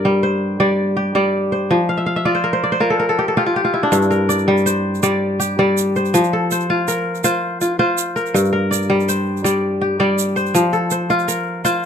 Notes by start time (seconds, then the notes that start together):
Already playing: G2 F4 A#4 C5 D5
0.05 G3
0.23 C5
0.60 G3 D5
0.97 G4
1.15 G3 D5
1.52 C5
1.71 F3
1.89 F5
1.97 E5
2.06 F5
2.16 E5
2.25 F4 D5
2.35 C5
2.44 A#4
2.53 C5
2.64 D5
2.72 C5
2.80 F4 A#4
2.90 A4
3.00 A#4
3.09 A4
3.19 G4
3.28 A4
3.37 F4 G4
3.46 F4
3.56 G4
3.65 F4
3.74 E4
3.83 D4
3.92 G2, shaker
4.02 shaker
4.11 A#4, shaker
4.29 D5, shaker
4.39 shaker
4.48 G3
4.57 shaker
4.66 C5, shaker
4.95 shaker
5.03 G3 D5, shaker
5.40 G4, shaker
5.59 G3 D5
5.77 shaker
5.96 C5, shaker
6.05 shaker
6.14 F3, shaker
6.24 shaker
6.33 A4
6.51 C5, shaker
6.60 shaker
6.70 F4
6.88 A#4, shaker
7.15 shaker
7.24 F4 C5, shaker
7.61 F4, shaker
7.79 F4 C5
7.98 shaker
8.16 A#4, shaker
8.26 shaker
8.34 G2, shaker
8.53 A#4
8.71 D5, shaker
8.90 G3
9.00 shaker
9.08 C5, shaker
9.37 shaker
9.44 G3 D5, shaker
9.81 G4
10.00 G3 D5
10.18 shaker
10.36 C5, shaker
10.46 shaker
10.54 F3, shaker
10.73 A4, shaker
10.91 C5, shaker
11.10 F4, shaker
11.19 shaker
11.28 A#4, shaker
11.65 F4 C5, shaker